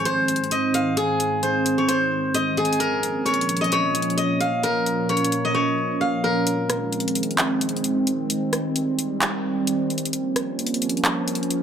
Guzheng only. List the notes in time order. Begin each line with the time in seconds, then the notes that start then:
Already playing: G#4 A#4 C#5 D#5
0.05 C5
0.51 D#5
0.74 F5
0.97 G#4
1.43 C5
1.78 C#5
1.88 C5
2.35 D#5
2.58 G#4
2.80 A#4
3.26 C#5
3.61 D#5
3.72 C#5
4.17 D#5
4.40 F5
4.63 A#4
5.10 C#5
5.45 D#5
5.55 C#5
6.01 F5
6.24 A#4